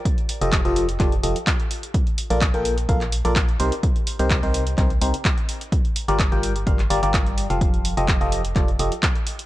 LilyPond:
<<
  \new Staff \with { instrumentName = "FM electric piano" } { \time 4/4 \key f \mixolydian \tempo 4 = 127 r8. <f f' g' a' ees''>8 <f f' g' a' ees''>8 r16 <f f' g' a' d''>16 r16 <f f' g' a' ees''>16 r4 r16 | r8. <bes f' a' bes' d''>16 r16 <bes f' a' bes' g''>8 r16 <bes f' a' bes' f''>16 r8 <bes f' a' bes' d''>16 r8 <c ees' g' bes' c''>16 r16 | r8. <c ees' g' bes' c''>8 <c ees' g' bes' c''>8 r16 <c ees' g' bes' c''>16 r16 <c ees' g' bes' c''>16 r4 r16 | r8. <g f' g' bes' d''>16 r16 <g f' g' bes' g''>8 r16 <g f' g' bes' f''>16 r16 <g f' g' bes' d''>16 <g f' g' bes' d''>4 <f f' g' a' f''>16~ |
<f f' g' a' f''>8. <f f' g' a' ees''>8 <f f' g' a' ees''>8 r16 <f f' g' a' d''>16 r16 <f f' g' a' ees''>16 r4 r16 | }
  \new Staff \with { instrumentName = "FM bass" } { \clef bass \time 4/4 \key f \mixolydian r8. f,,8 f,,8. f,,8 f,,16 r4 r16 | r8. bes,,8 bes,,8. bes,,8. bes,,8. c,16 r16 | r8. c,8 c,8. c,8 c,16 r4 r16 | r8. g,,8 g,,8. g,,8 g,,16 g,,4 f,,16~ |
f,,8. f,,8 f,,8. f,,8 f,,16 r4 r16 | }
  \new DrumStaff \with { instrumentName = "Drums" } \drummode { \time 4/4 <hh bd>16 hh16 hho16 hh16 <hc hh bd>16 hh16 hho16 hh16 <hc hh bd>16 hh16 hho16 hh16 <hc hh bd>16 hh16 hho16 hh16 | <hh bd>16 hh16 hho16 hh16 <hc hh bd>16 hh16 hho16 hh16 <hh bd>16 <hc hh>16 hho16 hh16 <hc hh bd>16 hh16 hho16 hh16 | <hh bd>16 hh16 hho16 hh16 <hc hh bd>16 hh16 hho16 hh16 <hc hh bd>16 hh16 hho16 hh16 <hc hh bd>16 hh16 hho16 hh16 | <hh bd>16 hh16 hho16 hh16 <hc hh bd>16 hh16 hho16 hh16 <hh bd>16 <hc hh>16 hho16 hh16 <hc hh bd>16 hh16 hho16 hh16 |
<hh bd>16 hh16 hho16 hh16 <hc hh bd>16 hh16 hho16 hh16 <hc hh bd>16 hh16 hho16 hh16 <hc hh bd>16 hh16 hho16 hh16 | }
>>